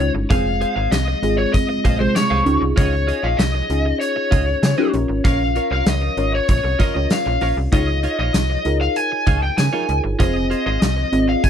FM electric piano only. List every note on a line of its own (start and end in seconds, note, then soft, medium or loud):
0.00 0.30 G#3 medium
0.00 0.32 C#4 medium
0.00 0.32 D#4 medium
0.00 0.32 E4 medium
0.00 0.31 F4 medium
0.30 1.08 G#3 medium
0.30 1.08 C4 medium
0.30 1.08 F4 medium
0.30 1.08 G#4 medium
1.22 1.87 G#3 medium
1.22 1.87 C4 medium
1.22 1.88 F4 medium
1.22 1.88 G#4 medium
1.99 2.47 C3 medium
1.99 2.46 G#3 medium
1.99 2.45 F4 medium
1.99 2.45 G#4 medium
2.45 3.49 C#4 medium
2.45 3.50 D#4 medium
2.45 3.50 F4 medium
2.45 3.50 G#4 medium
3.69 4.60 C#4 medium
3.69 4.61 D#4 medium
3.69 4.61 F4 medium
3.69 4.61 G#4 medium
4.78 4.91 C#4 medium
4.78 4.94 D#4 medium
4.78 4.91 F4 medium
4.78 4.94 G4 loud
4.92 5.97 C#4 medium
4.92 5.97 F4 medium
4.92 5.97 A#4 medium
4.92 5.97 C#5 loud
6.17 6.82 C#4 medium
6.17 6.82 F4 medium
6.17 6.83 A#4 medium
6.17 6.83 C#5 medium
6.95 7.60 C#4 medium
6.95 7.60 F4 medium
6.95 7.60 A#4 medium
6.95 7.60 C#5 medium
7.72 8.49 D#4 medium
7.72 8.50 F4 medium
7.72 8.50 G#4 medium
7.72 8.50 C#5 medium
8.65 9.55 D#4 medium
8.65 9.56 F4 medium
8.65 9.56 G#4 medium
8.65 9.56 A#4 medium
9.73 10.12 D#4 medium
9.73 10.12 F4 medium
9.73 10.12 G#4 medium
9.73 10.13 A#4 medium
10.19 10.97 C4 medium
10.19 10.97 F4 medium
10.19 10.97 G#4 medium
10.19 10.98 C5 medium
11.12 11.50 C4 medium
11.12 11.50 F4 medium
11.12 11.50 G#4 medium
11.12 11.19 D5 medium
11.19 11.50 D#5 medium